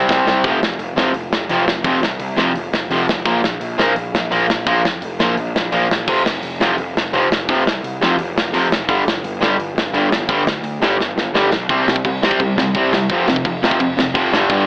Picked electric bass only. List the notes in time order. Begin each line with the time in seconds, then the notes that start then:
0.09 C2
0.25 C2
0.44 F1
0.60 F1
0.78 F1
0.95 F1
1.13 F1
1.31 F1
1.50 F1
1.65 F1
1.84 F1
2.02 C2
2.19 C2
2.37 F1
2.56 F1
2.72 F1
2.90 F1
3.08 F1
3.26 A#1
3.43 A#1
3.61 A#1
3.78 A#1
3.96 A#1
4.14 A#1
4.32 A#1
4.50 A#1
4.67 A#1
4.85 F2
5.02 F1
5.19 A#1
5.38 A#1
5.55 A#1
5.73 A#1
5.90 A#1
6.07 F1
6.26 F1
6.43 F1
6.60 F1
6.78 F1
6.96 F1
7.13 F1
7.30 F1
7.49 F1
7.66 C2
7.84 C2
8.01 F1
8.18 F1
8.35 F1
8.53 F1
8.70 F1
8.89 G1
9.06 G1
9.24 G1
9.41 G1
9.57 G1
9.75 G1
9.93 G1
10.11 G1
10.29 G1
10.46 D2
10.63 D2
10.80 G1
10.98 G1
11.16 G1
11.33 G1
11.51 B1
11.69 C2
11.87 C2
12.04 C2
12.40 C3
12.56 C2
12.74 C2
12.91 C2
13.10 F1
13.27 F1
13.44 F1
13.80 F2
13.98 F1
14.15 F1
14.32 G1
14.49 G1